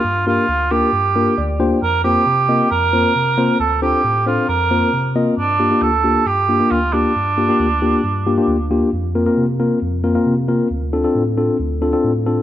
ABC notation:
X:1
M:4/4
L:1/16
Q:1/4=135
K:Gm
V:1 name="Cor anglais"
F2 F4 G8 z2 | B2 G6 B8 | A2 G4 F2 B6 z2 | D4 A4 G4 F2 D2- |
D12- D2 z2 | z16 | z16 |]
V:2 name="Tine electric piano"
z2 [B,DFGB]2 z2 [B,DFGB]2 z2 [B,DFGB]2 d2 [B,DFGcg]2 | z2 [B,CFBc]2 z2 [B,CFBe]2 z2 [B,CFBc]2 z2 [B,CFBc]2 | z2 [CDFAc]2 z2 [CDFAc]2 z2 [B,CFBc]2 z2 [B,CFBe]2 | z2 [B,DFG] [B,DFG]2 z [B,DFG]2 z2 [B,DFG] [B,DFB]2 z [B,DFG]2 |
z2 [B,DFG] [B,DFG]2 z [B,DFG]2 z2 [B,DFG] [B,DFG]2 z [B,DFG]2 | z2 [B,CFB] [B,CFB]2 z [B,CFB]2 z2 [B,CFB] [B,CFB]2 z [B,CFB]2 | z2 [CDFA] [CDFA]2 z [CDFA]2 z2 [CDFA] [CDFA]2 z [CDFA]2 |]
V:3 name="Tine electric piano" clef=bass
G,,4 D,,4 G,,4 D,,4 | F,,4 C,4 F,,4 C,4 | D,,4 A,,4 F,,4 C,4 | G,,4 D,,4 G,,4 D,,4 |
G,,4 D,,4 G,,4 D,,4 | F,,4 C,4 F,,4 C,4 | D,,4 A,,4 D,,4 A,,4 |]